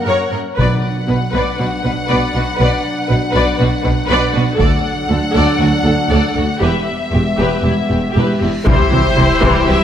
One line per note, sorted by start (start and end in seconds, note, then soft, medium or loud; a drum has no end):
0.00 0.39 F#5 medium
0.06 0.14 F#2 soft
0.06 0.30 A#4 soft
0.06 0.30 C#5 medium
0.31 0.39 F#2 soft
0.31 0.40 A#4 soft
0.57 0.66 B1 soft
0.57 0.66 B2 soft
0.57 1.30 B2 soft
0.57 4.56 F#3 soft
0.57 4.56 D4 soft
0.57 0.81 B4 soft
0.57 0.82 D5 soft
0.57 4.56 F#5 soft
0.57 taiko soft
1.08 1.18 B1 soft
1.08 1.16 B2 soft
1.08 1.17 B4 soft
1.33 1.42 B1 soft
1.33 1.42 B2 soft
1.33 1.56 B4 soft
1.33 1.58 D5 soft
1.57 1.68 B1 soft
1.57 1.67 B2 soft
1.57 1.69 F#4 soft
1.57 1.65 B4 soft
1.83 1.94 B1 soft
1.83 1.92 B2 soft
1.83 1.91 B4 soft
1.83 1.93 B4 soft
2.08 2.18 B1 soft
2.08 2.18 B2 soft
2.08 2.33 B4 soft
2.08 2.32 D5 soft
2.34 2.42 B1 soft
2.34 2.43 B2 soft
2.34 2.44 F#4 soft
2.34 2.42 B4 soft
2.58 2.68 B1 soft
2.58 2.67 B2 soft
2.58 2.82 B4 soft
2.58 2.83 D5 soft
3.09 3.19 B1 soft
3.09 3.18 B2 soft
3.09 3.17 B4 soft
3.09 3.18 B4 soft
3.33 3.42 B1 soft
3.33 3.42 B2 soft
3.33 3.57 B4 medium
3.33 3.58 D5 medium
3.58 3.68 B1 soft
3.58 3.67 B2 soft
3.58 3.67 F#4 soft
3.58 3.66 B4 soft
3.83 3.94 B1 soft
3.83 3.91 B2 soft
3.83 3.91 B4 soft
3.83 3.92 B4 soft
4.08 4.18 B1 medium
4.08 4.17 B2 medium
4.08 4.32 B4 medium
4.08 4.33 D5 medium
4.34 4.44 B1 soft
4.34 4.42 B2 soft
4.34 4.43 F#4 medium
4.34 4.42 B4 medium
4.58 4.66 D2 medium
4.58 4.68 D2 medium
4.58 6.44 F#3 medium
4.58 6.44 D4 medium
4.58 4.82 A4 medium
4.58 4.83 D5 medium
4.58 6.58 F#5 medium
4.58 taiko medium
5.08 5.17 D2 soft
5.08 5.19 D2 soft
5.08 5.16 A4 soft
5.08 5.19 A4 soft
5.33 5.42 D2 medium
5.33 5.44 D2 medium
5.33 5.57 A4 medium
5.37 5.59 D5 medium
5.58 5.67 D2 soft
5.58 5.69 D2 soft
5.58 5.68 F#4 soft
5.58 5.66 A4 soft
5.84 5.92 D2 soft
5.84 5.94 D2 soft
5.84 5.92 A4 soft
5.84 5.93 A4 soft
6.10 6.18 D2 medium
6.10 6.19 D2 medium
6.10 6.34 A4 soft
6.10 6.34 D5 medium
6.35 6.43 D2 soft
6.35 6.44 D2 soft
6.35 6.45 F#4 soft
6.35 6.44 A4 soft
6.60 6.70 E1 soft
6.60 6.69 E2 soft
6.60 8.38 G3 soft
6.60 8.38 B3 soft
6.60 6.85 G4 soft
6.60 6.85 B4 soft
6.60 8.45 E5 soft
6.60 reverse cymbal soft
7.12 7.22 E1 soft
7.12 7.21 E2 soft
7.12 7.20 G4 soft
7.12 7.22 G4 soft
7.38 7.47 E1 soft
7.38 7.46 E2 soft
7.38 7.62 G4 soft
7.38 7.63 B4 soft
7.63 7.73 E1 soft
7.63 7.72 E2 soft
7.63 7.72 E4 soft
7.63 7.71 G4 soft
7.89 8.00 E1 soft
7.89 7.98 E2 soft
7.89 7.97 G4 soft
7.89 8.00 G4 soft
8.14 8.25 E1 soft
8.14 8.24 E2 soft
8.14 8.38 G4 soft
8.14 8.41 B4 soft
8.40 8.51 E1 soft
8.40 8.50 E2 soft
8.40 8.49 E4 soft
8.40 8.48 G4 soft
8.66 8.76 C2 medium
8.66 8.74 C3 medium
8.66 8.90 E3 medium
8.66 8.90 G3 medium
8.66 9.84 G3 medium
8.66 9.84 E4 medium
8.66 9.84 E4 soft
8.66 9.84 E4 medium
8.66 9.84 G4 medium
8.66 9.84 C5 medium
8.66 9.64 C5 medium
8.66 9.84 E5 soft
8.66 taiko loud
8.66 sub drop medium
8.92 9.01 C2 soft
8.92 9.00 C3 soft
8.92 9.00 E3 soft
8.92 9.00 F#3 soft
9.17 9.26 C2 soft
9.17 9.25 C3 soft
9.17 9.25 E3 soft
9.17 9.25 G3 soft
9.42 9.52 C2 medium
9.42 9.50 C3 medium
9.42 9.66 E3 medium
9.42 9.66 G3 medium
9.42 taiko medium
9.66 9.77 C2 soft
9.66 9.75 C3 soft
9.66 9.75 E3 soft
9.66 9.74 F#3 soft
9.66 9.84 E5 medium